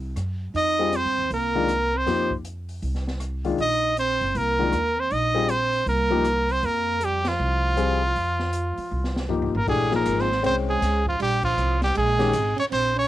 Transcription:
Already playing: upright bass C2
0.16 upright bass F#2, cross-stick, closed hi-hat
0.54 upright bass F2, trombone D#4, trumpet D#5, open hi-hat
0.79 grand piano G3 C4 F4 G#4
0.92 trombone C4, trumpet C5, closed hi-hat
1.05 upright bass G2
1.18 upright bass D#2
1.30 upright bass C2, trombone A#3, trumpet A#4, open hi-hat
1.55 grand piano D#3 G#3 D4 F4
1.68 cross-stick, closed hi-hat
1.94 trombone C4, trumpet C5
2.06 upright bass F2, grand piano F3 A#3 D#4 G4, snare, open hi-hat
2.30 kick
2.44 closed hi-hat
2.69 open hi-hat
2.82 upright bass C2, open hi-hat
2.95 snare
3.07 snare
3.20 cross-stick, closed hi-hat
3.44 grand piano D#3 G#3 D4 F4, open hi-hat
3.58 upright bass A#1, trombone D#4, trumpet D#5, open hi-hat
3.97 trombone C4, trumpet C5, closed hi-hat
4.21 upright bass F#1, open hi-hat
4.35 upright bass C2, trombone A#3, trumpet A#4, open hi-hat
4.59 grand piano D#3 G#3 D4 F4
4.72 upright bass D#2, cross-stick, closed hi-hat
4.98 trombone C4, trumpet C5
5.11 upright bass A#1, trombone D#4, trumpet D#5, open hi-hat
5.34 grand piano G3 C4 F4 G#4
5.49 trombone C4, trumpet C5, closed hi-hat
5.73 open hi-hat
5.86 upright bass C2, trombone A#3, trumpet A#4, open hi-hat
6.11 grand piano F3 A#3 D#4 G4
6.24 cross-stick, closed hi-hat
6.49 trombone C4, trumpet C5, open hi-hat
6.63 upright bass F2, trombone A#3, trumpet A#4, open hi-hat
7.01 trombone G3, closed hi-hat
7.05 trumpet G4
7.25 trombone F3, trumpet F4, snare, ride
7.40 upright bass C2
7.76 grand piano G3 C4 F4 G#4, cross-stick, closed hi-hat
8.16 upright bass F2, open hi-hat
8.39 snare
8.53 closed hi-hat
8.77 muted upright bass stroke, open hi-hat
8.91 upright bass C2
9.04 snare
9.16 snare
9.29 grand piano F3 A#3 D#4 G4, floor tom
9.42 floor tom
9.54 upright bass A1, trombone A#3, trumpet A#4, floor tom
9.67 upright bass A#1, grand piano E3 A3 D4 G4, trombone G#3, trumpet G#4, kick, crash
9.91 grand piano F3 A#3 D#4 G#4, trombone A#3, snare
9.96 trumpet A#4
10.06 upright bass G#1, hi-hat pedal, ride
10.18 trombone C4, trumpet C5, snare
10.32 snare
10.43 upright bass C2, grand piano G#3 C#4 C5 G5, trombone C4, trumpet C5, ride
10.68 trombone G#3, trumpet G#4
10.82 upright bass C#2, snare, hi-hat pedal, ride
11.06 trombone F3, trumpet F4, kick
11.19 upright bass A#1, trombone G3, trumpet G4, ride
11.43 trombone F3, trumpet F4, kick, crash
11.57 upright bass C2, hi-hat pedal
11.81 trombone G3, trumpet G4, snare, ride
11.94 upright bass A#1, trombone G#3, trumpet G#4, ride
12.19 grand piano D#3 G#3 C#4 G4, snare, ride
12.33 upright bass G#1, hi-hat pedal, ride
12.56 trombone C#4, trumpet C#5, muted upright bass stroke, ride
12.70 upright bass A#1, trombone C4, trumpet C5, ride
12.96 trombone C#4, trumpet C#5

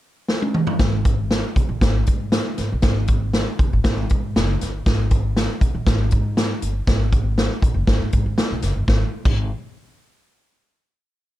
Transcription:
0.28 snare
0.42 high tom
0.54 mid tom
0.67 floor tom
0.79 upright bass G#1, kick, snare, closed hi-hat
1.05 kick, closed hi-hat
1.31 snare, closed hi-hat
1.56 upright bass B1, kick, closed hi-hat
1.69 upright bass A#1
1.81 upright bass G#1, kick, snare, closed hi-hat
2.06 upright bass G#2, kick, closed hi-hat
2.32 snare, closed hi-hat
2.58 upright bass G#1, snare, closed hi-hat
2.72 upright bass B1
2.82 upright bass G#1, kick, snare, closed hi-hat
3.08 kick, closed hi-hat
3.33 snare, closed hi-hat
3.59 upright bass F#1, kick, closed hi-hat
3.73 upright bass G#1
3.84 upright bass G#1, kick, snare, closed hi-hat
4.09 upright bass G#2, kick, closed hi-hat
4.36 upright bass F#1, snare, closed hi-hat
4.61 upright bass G1, snare, closed hi-hat
4.86 upright bass G#1, kick, snare, closed hi-hat
5.11 kick, closed hi-hat
5.37 snare, closed hi-hat
5.61 upright bass B1, kick, closed hi-hat
5.75 upright bass A#1
5.86 upright bass G#1, kick, snare, closed hi-hat
6.11 upright bass G#2, kick, closed hi-hat
6.37 snare, closed hi-hat
6.62 upright bass G1, closed hi-hat
6.87 upright bass G#1, kick, snare, closed hi-hat
7.12 kick, closed hi-hat
7.38 snare, closed hi-hat
7.62 upright bass A#1, kick, closed hi-hat
7.74 upright bass F#1
7.87 upright bass G#1, kick, snare, closed hi-hat
8.00 upright bass G#2
8.12 upright bass G#2, kick, closed hi-hat
8.26 upright bass G#1
8.38 snare, closed hi-hat
8.51 upright bass B1
8.62 upright bass F#1, snare, closed hi-hat
8.76 upright bass G1
8.88 upright bass G#1, kick, snare
9.25 upright bass G#1, kick, crash

